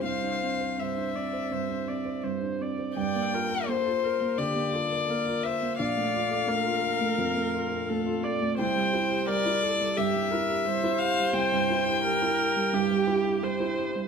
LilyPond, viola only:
\new Staff \with { instrumentName = "Viola" } { \time 4/4 \key c \mixolydian \tempo 4 = 86 c''4 c''8 d''8 c''8 d''8 c''8 d''8 | d''8 bes'8 a'8 bes'8 g'8 a'8 bes'8 c''8 | d''4 bes'2 a'8 d''8 | c''4 bes'8 a'8 g'8 bes'8 c''4~ |
c''4 bes'4 g'4 c''4 | }